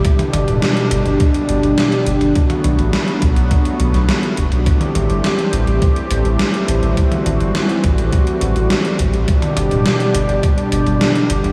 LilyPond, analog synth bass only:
\new Staff \with { instrumentName = "Analog synth bass" } { \clef bass \time 4/4 \key a \dorian \tempo 4 = 104 r8 g,,16 d,,16 r8 g,,16 g,,16 r8 g,,16 g,,16 r8 g,,16 g,,16 | r8 b,,16 a,,16 r8 b,,16 b,,16 r8 b,,16 b,,16 r8 fis,,16 b,,16 | r8 a,,16 g,,16 r8 a,,16 a,,16 r8 a,,16 a,,16 r8 a,,16 a,,16 | r8 a,,16 g,,16 r8 a,,16 a,,16 r8 a,,16 a,,16 r8 a,,16 a,,16 |
r8 g,,16 d,,16 r8 g,,16 g,,16 r8 g,,16 g,,16 r8 g,,16 g,,16 | }